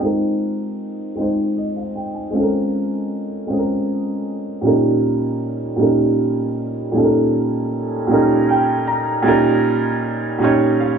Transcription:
0.00 G#3 C4 D#4 F4
0.05 A#4
1.15 G#3 C4 D#4
1.20 F4 C5
1.57 D#5
1.76 F5
1.96 G5
2.15 G#5
2.30 G#3 C4 C#4
2.35 F4 A4
2.43 A#4
3.46 G#3 C4 C#4
3.50 F4 G#4
3.59 A#4
4.61 A#2 G3 C#4 D#4
4.66 F4 A#4
5.76 A#2 G3 C#4 D#4
5.81 F4 A#4
6.92 A#2 G3 C#4 D#4
6.96 F4 A4
7.04 A#4
8.07 A#2 G3 C#4 D#4
8.11 F4 A#4
8.49 G5
8.87 A#5
9.22 A#2 G3 C#4 D#4
9.27 F4 A#4
10.38 A#2 G3 C#4 D#4
10.43 F4 C#5
10.80 F5

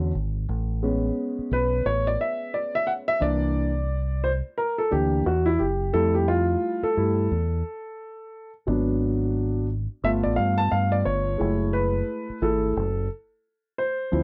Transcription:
Already playing: E2 D3 F#3 G#3 C#4
0.15 G#1
0.49 A1
0.83 G#3 B3 C#4
1.39 muted fingered electric bass stroke
1.51 B1 B4
1.85 A1 C#5
2.07 D5
2.21 E5
2.54 D5
2.75 E5
2.87 F#5
3.08 E5
3.20 C2 E3 A#3 D4 D5
4.24 C5
4.58 A#4
4.78 A4
4.91 D2 E3 A#3 D4 G4
5.26 E2 F#4
5.46 E4
5.59 F#1 G4
5.93 F2 G3 A3 E4 A4
6.15 G4
6.28 F4
6.83 A4, muted fingered electric bass stroke
6.96 G2 G3 A3 E4
7.31 E2
8.67 G#1 F#3 B3 D4
10.04 G1 A3 B3 F4 E5
10.23 A1 D5
10.36 G2 F5
10.58 A5
10.72 G2 F5
10.92 D5
11.05 G1 C#5
11.38 F#1 G#3 A3 E4
11.73 B4
12.29 muted fingered electric bass stroke
12.42 G#1 A3 E4 G#4 A4
12.77 F#1
13.78 C5
14.12 D2 F3 C4 E4

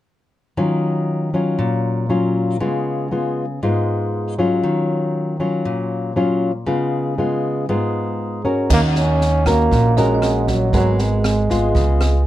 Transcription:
0.57 D#3 F#3 C#4 F4
1.34 F#3 C#4 F4
1.59 A#2
2.09 F#3 C#4 F4
2.60 C#3 G#3 B3 F4
3.11 G#3 B3 F4
3.63 G#2 G#3 B3 F4
4.38 F#3 C#4 F4
4.63 D#3
5.40 F#3 C#4 F4
5.65 A#2
6.16 F#3 C#4 F4
6.66 C#3 G#3 B3 F4
7.18 G#3 B3 F4
7.69 G#2 G#3 B3 F4
8.45 C#4 F#4 A#4
8.70 D#2 D#3 A#3 D#5, kick, cross-stick, snare, crash
8.88 D#4 F#5
8.95 C#4, snare
9.21 snare
9.46 A#3 C#4 F#4 A#4, kick, cross-stick, snare
9.71 A#1 A#2, kick, snare
9.97 G#3 C#4 F#4 A#4 D#5, snare
10.14 F#5
10.22 cross-stick, snare
10.48 F#3, kick, snare
10.73 G#1 F#3 G#3 B3 F#4 A#4, kick, snare
10.99 G#3, snare
11.24 cross-stick, snare
11.50 G#3 B3 F4, kick, snare
11.75 C#2 C#3, kick, snare
12.01 cross-stick, snare

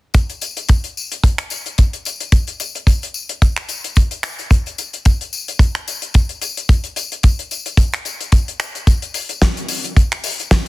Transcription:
0.14 kick, closed hi-hat, tambourine
0.29 closed hi-hat, tambourine
0.41 closed hi-hat, tambourine
0.57 closed hi-hat, tambourine
0.69 kick, closed hi-hat, tambourine
0.84 closed hi-hat, tambourine
0.97 tambourine
1.12 closed hi-hat, tambourine
1.24 kick, closed hi-hat, tambourine
1.38 finger snap, closed hi-hat, tambourine
1.50 closed hi-hat, tambourine
1.66 closed hi-hat, tambourine
1.78 kick, closed hi-hat, tambourine
1.93 closed hi-hat, tambourine
2.05 closed hi-hat, tambourine
2.20 closed hi-hat, tambourine
2.32 kick, closed hi-hat, tambourine
2.47 closed hi-hat, tambourine
2.60 closed hi-hat, tambourine
2.75 closed hi-hat, tambourine
2.87 kick, closed hi-hat, tambourine
3.02 closed hi-hat, tambourine
3.14 tambourine
3.29 closed hi-hat, tambourine
3.42 kick, closed hi-hat, tambourine
3.56 finger snap, closed hi-hat, tambourine
3.69 closed hi-hat, tambourine
3.84 closed hi-hat, tambourine
3.96 kick, closed hi-hat, tambourine
4.11 closed hi-hat, tambourine
4.23 finger snap, closed hi-hat, tambourine
4.38 closed hi-hat, tambourine
4.50 kick, closed hi-hat, tambourine
4.66 closed hi-hat, tambourine
4.78 closed hi-hat, tambourine
4.93 closed hi-hat, tambourine
5.05 kick, closed hi-hat, tambourine
5.21 closed hi-hat, tambourine
5.33 tambourine
5.48 closed hi-hat, tambourine
5.59 kick, closed hi-hat, tambourine
5.75 finger snap, closed hi-hat, tambourine
5.88 closed hi-hat, tambourine
6.02 closed hi-hat, tambourine
6.14 kick, closed hi-hat, tambourine
6.29 closed hi-hat, tambourine
6.42 closed hi-hat, tambourine
6.57 closed hi-hat, tambourine
6.69 kick, closed hi-hat, tambourine
6.84 closed hi-hat, tambourine
6.96 closed hi-hat, tambourine
7.12 closed hi-hat, tambourine
7.23 kick, closed hi-hat, tambourine
7.39 closed hi-hat, tambourine
7.51 closed hi-hat, tambourine
7.66 closed hi-hat, tambourine
7.77 kick, closed hi-hat, tambourine
7.92 finger snap, closed hi-hat, tambourine
8.05 closed hi-hat, tambourine
8.21 closed hi-hat, tambourine
8.32 kick, closed hi-hat, tambourine
8.48 closed hi-hat, tambourine
8.60 finger snap, closed hi-hat, tambourine
8.75 closed hi-hat, tambourine
8.87 kick, closed hi-hat, tambourine
9.02 closed hi-hat, tambourine
9.14 open hi-hat, tambourine
9.29 closed hi-hat, tambourine
9.42 kick, snare, closed hi-hat, tambourine
9.57 closed hi-hat, tambourine
9.68 open hi-hat, tambourine
9.84 closed hi-hat, tambourine
9.97 kick, closed hi-hat, tambourine
10.12 finger snap, closed hi-hat, tambourine
10.24 open hi-hat, tambourine
10.39 closed hi-hat, tambourine
10.51 kick, snare, closed hi-hat, tambourine

